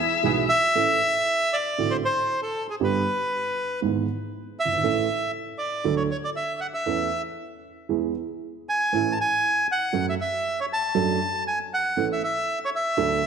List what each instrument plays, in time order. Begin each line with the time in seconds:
Already playing: violin E5
0.23 upright piano B1 B2 E3 G#3 B3 G#4, bandoneon B3 E4 G#4
0.49 bandoneon E5
0.75 upright piano A1 A2 E3 A3 C#4 A4
1.53 bandoneon D5
1.78 upright piano A1 A2 D3 A3 C4 F#4
1.91 bandoneon C5
2.05 bandoneon C5
2.43 bandoneon A4
2.70 bandoneon G#4
2.80 upright piano G1 G2 D3 G3 B3 G4, bandoneon B4
3.82 upright piano G#1 G#2 E3 G#3 B3 G#4
4.60 bandoneon E5
4.65 upright piano F#1
4.72 upright piano G1
4.77 upright piano G#1
4.83 upright piano A1 A2 E3 A3 C#4 A4
5.58 bandoneon D5
5.84 upright piano D2 D3 F#3 A3 D4 A4
5.97 bandoneon C#5
6.11 bandoneon C#5
6.24 bandoneon D5
6.36 bandoneon E5
6.61 bandoneon F#5
6.74 bandoneon E5
6.86 upright piano E2 E3 A3 C#4 A4
7.89 upright piano E2 E3 G#3 B3 G#4
8.69 bandoneon G#5
8.93 upright piano A1 A2 E3 A3 C#4 A4
9.12 bandoneon A5
9.21 bandoneon G#5
9.72 bandoneon F#5
9.93 upright piano F#2 F#3 A3 C#4 A4
10.09 bandoneon E5
10.21 bandoneon E5
10.60 bandoneon C#5
10.73 bandoneon A5
10.95 upright piano F#2 F#3 A3 D4 A4
11.48 bandoneon G#5
11.74 bandoneon F#5
11.96 upright piano A1 A2 E3 A3 C#4 A4
12.13 bandoneon E5
12.24 bandoneon E5
12.65 bandoneon C#5
12.75 bandoneon E5
12.97 upright piano D2 D3 F#3 A3 D4 A4